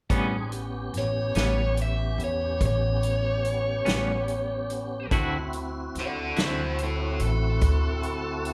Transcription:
0.10 A1 A2 G3 B3 C4 C#4 D4 G#4, kick, closed hi-hat
0.51 B3 C#4 G4, closed hi-hat
0.94 A1 C#5, snare, closed hi-hat
1.35 A1 A2 G3 B3 C#4, snare, closed hi-hat
1.77 closed hi-hat
1.82 E5
2.18 E2, closed hi-hat
2.24 C#5
2.61 A1, kick, closed hi-hat
2.65 C#5
3.03 closed hi-hat
3.45 closed hi-hat
3.85 A1 A2 G3 B3 C#4, snare, closed hi-hat
4.28 closed hi-hat
4.70 closed hi-hat
5.11 D2 D3 C4 E4 F#4, kick, closed hi-hat
5.53 closed hi-hat
5.95 D2, snare, closed hi-hat
5.99 A4 D5
6.36 D2 D3 C4 E4 F#4, snare, closed hi-hat
6.41 E4 C5
6.78 closed hi-hat
6.83 E4 A4
7.19 A1, closed hi-hat
7.25 A4
7.61 D2, kick, closed hi-hat
8.03 closed hi-hat
8.45 closed hi-hat

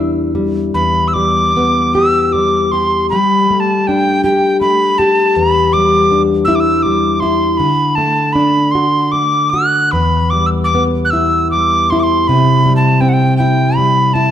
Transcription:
Already playing: E2 G3 D4 E4
0.35 G3
0.74 E2 B5
1.08 E6
1.14 G3 D6
1.57 B3
1.93 G4 E6
2.25 E6
2.32 G3 D6
2.72 G4 C6
3.10 G3 B5
3.50 A3
3.60 A5
3.87 D4 G5
4.24 G4 G5
4.61 A3 B5
4.98 G4 A5
5.35 E2 B5
5.73 G3 D6
6.11 D4
6.45 E4 E6
6.55 D6
6.60 E6
6.78 E6
6.83 G3 D6
7.15 D6
7.20 E4 C6
7.57 D3 B5
7.95 A3 A5
8.33 D4 B5
8.71 F#4 C6
9.12 A3 D6
9.50 F#4 F#6
9.91 E2 B5
10.30 G3 D6
10.46 E6
10.64 D6
10.75 B3
11.05 F#6
11.10 E4 E6
11.51 G3 D6
11.90 E4 C6
11.99 C6 D6
12.27 C3 B5
12.66 G3
12.76 A5
13.01 C4 G5
13.09 F#5
13.13 G5
13.37 E4 G5
13.76 G3 B5
14.14 E4 A5

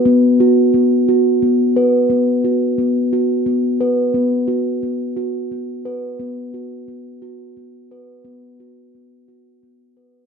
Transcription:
0.05 B3
0.40 F#4
0.74 B3
1.09 F#4
1.42 B3
1.76 B4
2.10 B3
2.44 F#4
2.78 B3
3.13 F#4
3.46 B3
3.81 B4
4.14 B3
4.48 F#4
4.83 B3
5.17 F#4
5.52 B3
5.85 B4
6.20 B3
6.54 F#4
6.88 B3
7.22 F#4
7.57 B3
7.91 B4
8.25 B3
8.60 F#4
8.95 B3
9.28 F#4
9.63 B3
9.97 B4

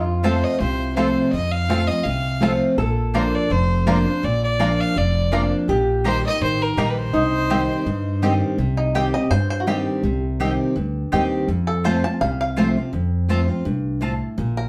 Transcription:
Already playing: F2 F4
0.23 F3 A3 C4 F4 A4 C5 A5
0.44 D#5
0.60 C2 C3 C5
0.96 F3 A3 C4 F4 A4 C5 A5
1.32 F2 D#5
1.51 F5
1.68 F3 A3 C4 F4 A4 C5 A5
1.87 C4 F4 D#5
2.04 C2 C3 F5
2.40 F3 A3 C4 F4 A4 C5 A5
2.77 A#1 A#2 A4
3.14 F3 A#3 D4 F4 A#4 C5 D5 A#5
3.35 D5
3.50 F1 F2 C5
3.86 F3 A#3 D4 F4 A#4 C5 D5 A#5
4.05 D4 F4
4.23 A#1 A#2 D5
4.44 D5
4.59 F3 A#3 D4 F4 A#4 D5 A#5
4.81 F5
4.96 F1 F2 D5
5.31 F3 A#3 D4 F4 A#4 D5 A#5
5.68 A#1 A#2 G4
6.04 D#3 G3 A#3 D#4 G4 C5 D#5 A#5
6.24 D#4 G4 D#5
6.41 A1 D#3 C5
6.62 A#4
6.77 A#1 D#3 G3 A#3 D#4 G4 D#5 A#5
6.90 B4
6.98 C5
7.13 C2 C3 D#4
7.50 D#3 G3 C4 G4 D#5 G5
7.86 G2
8.22 D#3 G3 C4 G4 D#5 G5
8.58 C2 C3
8.77 D#4
8.94 D#3 G3 C4 G4 D#5 G5
9.14 C4 G4 D#5
9.30 G2 C5
9.50 C5
9.60 F#4
9.67 D#3 G3 C4 G4 D#5 G5
10.03 C2 C3
10.40 D#3 G3 C4 G4 D#5 G5
10.76 D2 G2
11.12 D#2 D#3 G3 C4 G4 D#5 G5
11.48 F2
11.67 A4
11.84 F3 A3 C4 F4 C5 A5
12.04 C4 F4 A5
12.21 C2 C3 F5
12.41 F5
12.57 F3 A3 C4 F4 C5 A5
12.77 C4 F4
12.93 F2
13.29 F3 A3 C4 F4 C5 A5
13.48 C4 F4
13.65 C2 G2
14.01 A2 C4 F4 C5 A5
14.38 A#1 A#2
14.57 A#4

